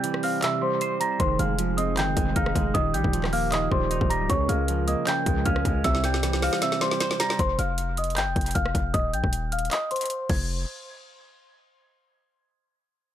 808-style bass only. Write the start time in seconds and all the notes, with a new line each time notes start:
1.20 F1
1.39 F1
1.97 G1
2.08 F1
2.17 F1
2.36 F1
2.55 F1
2.75 D#1
2.94 A#1
3.04 D#1
3.71 D#1
4.01 D#1
4.20 C#1
4.30 C#2
4.49 C#2
5.26 C#2
5.46 C#2
5.65 C#2
5.84 C2
7.39 F1
7.59 F1
8.17 G1
8.27 F1
8.36 F1
8.55 F1
8.75 F1
8.94 D#1
9.13 A#1
9.24 D#1
10.30 F1